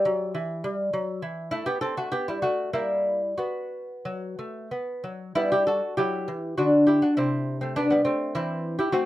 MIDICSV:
0, 0, Header, 1, 2, 480
1, 0, Start_track
1, 0, Key_signature, 1, "minor"
1, 0, Tempo, 597015
1, 1219, Time_signature, 3, 2, 24, 8
1, 2197, Tempo, 659341
1, 3637, Tempo, 634249
1, 4597, Tempo, 591133
1, 7095, End_track
2, 0, Start_track
2, 0, Title_t, "Lute"
2, 0, Program_c, 0, 24
2, 0, Note_on_c, 0, 67, 69
2, 0, Note_on_c, 0, 76, 91
2, 43, Note_on_c, 0, 54, 79
2, 266, Note_off_c, 0, 54, 0
2, 278, Note_on_c, 0, 52, 84
2, 503, Note_off_c, 0, 52, 0
2, 516, Note_on_c, 0, 55, 84
2, 597, Note_off_c, 0, 76, 0
2, 603, Note_off_c, 0, 67, 0
2, 738, Note_off_c, 0, 55, 0
2, 751, Note_on_c, 0, 54, 77
2, 972, Note_off_c, 0, 54, 0
2, 984, Note_on_c, 0, 52, 75
2, 1208, Note_off_c, 0, 52, 0
2, 1216, Note_on_c, 0, 64, 95
2, 1224, Note_on_c, 0, 57, 65
2, 1333, Note_off_c, 0, 57, 0
2, 1334, Note_on_c, 0, 67, 96
2, 1338, Note_off_c, 0, 64, 0
2, 1342, Note_on_c, 0, 59, 70
2, 1452, Note_off_c, 0, 67, 0
2, 1454, Note_off_c, 0, 59, 0
2, 1455, Note_on_c, 0, 69, 98
2, 1463, Note_on_c, 0, 60, 79
2, 1576, Note_off_c, 0, 60, 0
2, 1581, Note_off_c, 0, 69, 0
2, 1587, Note_on_c, 0, 66, 81
2, 1593, Note_on_c, 0, 57, 53
2, 1702, Note_off_c, 0, 57, 0
2, 1702, Note_on_c, 0, 67, 98
2, 1707, Note_off_c, 0, 66, 0
2, 1708, Note_on_c, 0, 59, 75
2, 1821, Note_off_c, 0, 59, 0
2, 1826, Note_off_c, 0, 67, 0
2, 1834, Note_on_c, 0, 64, 80
2, 1843, Note_on_c, 0, 55, 59
2, 1944, Note_off_c, 0, 64, 0
2, 1947, Note_on_c, 0, 66, 86
2, 1950, Note_off_c, 0, 55, 0
2, 1959, Note_on_c, 0, 57, 63
2, 2185, Note_off_c, 0, 57, 0
2, 2186, Note_off_c, 0, 66, 0
2, 2198, Note_on_c, 0, 58, 69
2, 2198, Note_on_c, 0, 64, 82
2, 2205, Note_on_c, 0, 55, 61
2, 2535, Note_off_c, 0, 58, 0
2, 2641, Note_off_c, 0, 55, 0
2, 2646, Note_off_c, 0, 64, 0
2, 2665, Note_on_c, 0, 66, 65
2, 2673, Note_on_c, 0, 59, 58
2, 3158, Note_on_c, 0, 54, 76
2, 3388, Note_off_c, 0, 54, 0
2, 3402, Note_on_c, 0, 57, 62
2, 3607, Note_off_c, 0, 66, 0
2, 3611, Note_off_c, 0, 59, 0
2, 3627, Note_off_c, 0, 57, 0
2, 3639, Note_on_c, 0, 59, 63
2, 3873, Note_off_c, 0, 59, 0
2, 3884, Note_on_c, 0, 54, 66
2, 4115, Note_off_c, 0, 54, 0
2, 4123, Note_on_c, 0, 64, 91
2, 4126, Note_on_c, 0, 55, 73
2, 4131, Note_on_c, 0, 59, 70
2, 4239, Note_off_c, 0, 59, 0
2, 4243, Note_off_c, 0, 64, 0
2, 4247, Note_on_c, 0, 67, 96
2, 4259, Note_on_c, 0, 64, 67
2, 4358, Note_off_c, 0, 67, 0
2, 4361, Note_on_c, 0, 69, 90
2, 4362, Note_off_c, 0, 64, 0
2, 4370, Note_on_c, 0, 66, 70
2, 4465, Note_off_c, 0, 55, 0
2, 4584, Note_off_c, 0, 66, 0
2, 4586, Note_off_c, 0, 69, 0
2, 4591, Note_on_c, 0, 67, 85
2, 4597, Note_on_c, 0, 54, 83
2, 4604, Note_on_c, 0, 64, 59
2, 4831, Note_off_c, 0, 54, 0
2, 4840, Note_on_c, 0, 52, 70
2, 5057, Note_off_c, 0, 64, 0
2, 5063, Note_off_c, 0, 67, 0
2, 5072, Note_off_c, 0, 52, 0
2, 5081, Note_on_c, 0, 66, 78
2, 5087, Note_on_c, 0, 50, 72
2, 5091, Note_on_c, 0, 62, 65
2, 5312, Note_off_c, 0, 62, 0
2, 5314, Note_off_c, 0, 66, 0
2, 5318, Note_on_c, 0, 67, 92
2, 5326, Note_on_c, 0, 64, 64
2, 5432, Note_off_c, 0, 50, 0
2, 5437, Note_off_c, 0, 64, 0
2, 5442, Note_off_c, 0, 67, 0
2, 5443, Note_on_c, 0, 66, 81
2, 5453, Note_on_c, 0, 62, 55
2, 5560, Note_off_c, 0, 66, 0
2, 5561, Note_off_c, 0, 62, 0
2, 5563, Note_on_c, 0, 64, 83
2, 5566, Note_on_c, 0, 48, 81
2, 5572, Note_on_c, 0, 60, 61
2, 5904, Note_off_c, 0, 60, 0
2, 5910, Note_off_c, 0, 64, 0
2, 5922, Note_on_c, 0, 60, 69
2, 5935, Note_on_c, 0, 57, 55
2, 6042, Note_off_c, 0, 57, 0
2, 6044, Note_off_c, 0, 60, 0
2, 6044, Note_on_c, 0, 62, 101
2, 6055, Note_on_c, 0, 59, 70
2, 6151, Note_off_c, 0, 59, 0
2, 6161, Note_on_c, 0, 59, 80
2, 6165, Note_off_c, 0, 62, 0
2, 6173, Note_on_c, 0, 55, 59
2, 6257, Note_off_c, 0, 48, 0
2, 6272, Note_off_c, 0, 59, 0
2, 6276, Note_on_c, 0, 60, 77
2, 6280, Note_off_c, 0, 55, 0
2, 6283, Note_on_c, 0, 57, 68
2, 6507, Note_off_c, 0, 57, 0
2, 6511, Note_off_c, 0, 60, 0
2, 6521, Note_on_c, 0, 52, 80
2, 6523, Note_on_c, 0, 64, 90
2, 6534, Note_on_c, 0, 60, 67
2, 6861, Note_off_c, 0, 60, 0
2, 6864, Note_off_c, 0, 52, 0
2, 6865, Note_off_c, 0, 64, 0
2, 6876, Note_on_c, 0, 67, 86
2, 6885, Note_on_c, 0, 64, 62
2, 6984, Note_off_c, 0, 64, 0
2, 6988, Note_on_c, 0, 66, 94
2, 6993, Note_on_c, 0, 57, 78
2, 6996, Note_off_c, 0, 67, 0
2, 6997, Note_on_c, 0, 60, 80
2, 7095, Note_off_c, 0, 57, 0
2, 7095, Note_off_c, 0, 60, 0
2, 7095, Note_off_c, 0, 66, 0
2, 7095, End_track
0, 0, End_of_file